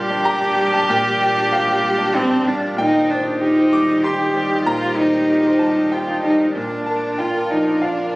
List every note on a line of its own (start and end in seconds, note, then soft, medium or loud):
0.00 0.85 A#2 medium
0.00 0.19 G3 medium
0.00 2.77 A#3 medium
0.00 0.10 D4 medium
0.00 0.25 G4 medium
0.00 2.17 G4 loud
0.00 2.77 G4 medium
0.00 0.92 D5 medium
0.00 2.77 D5 medium
0.00 0.21 C6 loud
0.10 0.35 D4 medium
0.25 0.51 G4 medium
0.25 0.69 A#5 loud
0.41 0.66 D4 medium
0.56 0.82 G3 medium
0.73 0.98 D4 medium
0.73 0.88 A5 loud
0.89 2.74 A#2 loud
0.89 1.49 G5 loud
1.04 1.29 G3 medium
1.19 1.45 D5 medium
1.36 1.61 D4 medium
1.52 1.77 G4 medium
1.52 2.42 F5 medium
1.67 1.92 D5 medium
1.83 2.08 G3 medium
1.98 2.24 D4 medium
2.14 2.49 C4 loud
2.14 2.39 G4 medium
2.29 2.55 D4 medium
2.45 2.71 G3 medium
2.45 2.79 D4 medium
2.61 2.77 D4 medium
2.77 4.62 A#2 medium
2.77 6.56 D#3 medium
2.77 3.12 D#4 loud
2.77 6.52 G4 loud
2.77 6.56 C5 medium
2.77 3.69 G5 loud
2.93 3.19 D#4 medium
3.10 3.41 D4 medium
3.10 3.35 C5 medium
3.25 3.50 D#4 medium
3.41 4.05 D#4 loud
3.41 3.66 G4 medium
3.57 3.82 C5 medium
3.73 3.98 G3 medium
3.73 4.02 D6 loud
3.88 4.13 D#4 medium
4.04 4.65 G4 medium
4.04 4.29 G4 medium
4.04 4.63 C6 loud
4.20 4.45 D#4 medium
4.36 4.61 G3 medium
4.51 4.76 D#4 medium
4.65 6.52 A#2 medium
4.65 4.99 F4 loud
4.65 5.57 A#5 loud
4.83 5.08 G3 medium
4.97 5.94 D#4 medium
4.97 5.23 C5 medium
5.14 5.39 D#4 medium
5.30 5.55 G4 medium
5.46 5.71 C5 medium
5.59 5.87 G3 medium
5.59 5.89 A5 medium
5.77 6.02 D#4 medium
5.92 6.23 F4 medium
5.92 6.18 G4 medium
5.92 6.51 G5 medium
6.09 6.34 D#4 medium
6.23 6.49 G3 medium
6.23 6.54 D#4 medium
6.39 6.55 D#4 medium
6.54 8.16 A#2 medium
6.54 7.21 D4 medium
6.54 8.16 F4 medium
6.54 8.16 A#4 medium
6.54 8.16 D5 medium
6.71 6.97 D4 medium
6.86 7.13 A#4 medium
6.86 7.17 A5 medium
7.04 7.29 D4 soft
7.18 7.52 F4 medium
7.18 7.46 F4 medium
7.18 7.79 G5 medium
7.34 7.61 A#4 medium
7.50 7.77 F3 soft
7.50 7.85 D#4 medium
7.67 7.93 D4 medium
7.82 8.16 D4 medium
7.82 8.09 F4 medium
7.82 8.16 F5 medium
7.98 8.16 D4 medium